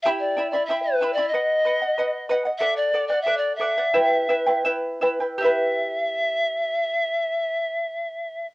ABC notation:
X:1
M:2/4
L:1/16
Q:1/4=88
K:Em
V:1 name="Charango"
[EGegb]2 [Eegb] [Eeb] [Eegb]2 [Eegb] [Eeb] | [B^df]2 [Bdf] [df] [Bdf]2 [Bdf] [df] | [Adf]2 [Adf] [df] [Adf]2 [Adf] [df] | [EGBeg]2 [EBeg] [EBg] [EBeg]2 [EBeg] [EBg] |
[EGBeg]8- | [EGBeg]8 |]
V:2 name="Pan flute"
e d2 d e B2 d | ^d6 z2 | e d2 d e d e2- | e4 z4 |
e8- | e8 |]